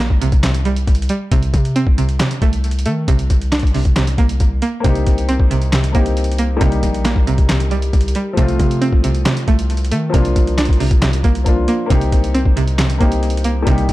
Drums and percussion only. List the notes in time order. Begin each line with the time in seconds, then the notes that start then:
0.10 kick
0.22 closed hi-hat
0.32 kick, closed hi-hat
0.43 snare, clap, closed hi-hat
0.54 closed hi-hat
0.65 closed hi-hat
0.76 closed hi-hat
0.87 kick, closed hi-hat
0.95 closed hi-hat
1.02 closed hi-hat
1.09 closed hi-hat
1.32 kick, closed hi-hat
1.43 closed hi-hat
1.54 kick, closed hi-hat
1.65 closed hi-hat
1.76 closed hi-hat
1.87 kick
1.98 closed hi-hat
2.09 closed hi-hat
2.20 snare, clap, closed hi-hat
2.31 closed hi-hat
2.42 kick, closed hi-hat
2.53 closed hi-hat
2.64 closed hi-hat
2.71 closed hi-hat
2.79 closed hi-hat
2.86 closed hi-hat
3.08 kick, closed hi-hat
3.19 closed hi-hat
3.30 kick, closed hi-hat
3.42 closed hi-hat
3.52 snare, clap, closed hi-hat
3.59 kick, closed hi-hat
3.67 closed hi-hat
3.75 open hi-hat
3.85 kick, closed hi-hat
3.96 snare, clap, closed hi-hat
4.07 closed hi-hat
4.18 kick, closed hi-hat
4.29 closed hi-hat
4.40 kick, closed hi-hat
4.62 closed hi-hat
4.84 kick, closed hi-hat
4.95 closed hi-hat
5.07 kick, closed hi-hat
5.18 closed hi-hat
5.29 closed hi-hat
5.40 kick
5.51 closed hi-hat
5.62 closed hi-hat
5.72 snare, clap, closed hi-hat
5.84 closed hi-hat
5.95 kick, closed hi-hat
6.06 closed hi-hat
6.17 closed hi-hat
6.24 closed hi-hat
6.32 closed hi-hat
6.38 closed hi-hat
6.61 kick, closed hi-hat
6.72 closed hi-hat
6.83 kick, closed hi-hat
6.94 closed hi-hat
7.05 snare, clap, closed hi-hat
7.16 kick
7.27 closed hi-hat
7.38 kick, closed hi-hat
7.49 snare, clap, closed hi-hat
7.60 closed hi-hat
7.71 closed hi-hat
7.82 closed hi-hat
7.93 kick, closed hi-hat
8.01 closed hi-hat
8.08 closed hi-hat
8.15 closed hi-hat
8.37 kick, closed hi-hat
8.48 closed hi-hat
8.60 kick, closed hi-hat
8.71 closed hi-hat
8.82 closed hi-hat
8.93 kick
9.04 closed hi-hat
9.15 closed hi-hat
9.25 snare, clap, closed hi-hat
9.37 closed hi-hat
9.48 kick, closed hi-hat
9.59 closed hi-hat
9.70 closed hi-hat
9.77 closed hi-hat
9.85 closed hi-hat
9.92 closed hi-hat
10.14 kick, closed hi-hat
10.25 closed hi-hat
10.36 kick, closed hi-hat
10.47 closed hi-hat
10.58 snare, clap, closed hi-hat
10.65 kick, closed hi-hat
10.73 closed hi-hat
10.80 open hi-hat
10.91 kick, closed hi-hat
11.02 snare, clap, closed hi-hat
11.13 closed hi-hat
11.24 kick, closed hi-hat
11.35 closed hi-hat
11.46 kick, closed hi-hat
11.68 closed hi-hat
11.90 kick, closed hi-hat
12.01 closed hi-hat
12.12 kick, closed hi-hat
12.24 closed hi-hat
12.35 closed hi-hat
12.45 kick
12.57 closed hi-hat
12.68 closed hi-hat
12.78 snare, clap, closed hi-hat
12.90 closed hi-hat
13.01 kick, closed hi-hat
13.12 closed hi-hat
13.23 closed hi-hat
13.30 closed hi-hat
13.37 closed hi-hat
13.44 closed hi-hat
13.67 kick, closed hi-hat
13.78 closed hi-hat
13.89 kick, closed hi-hat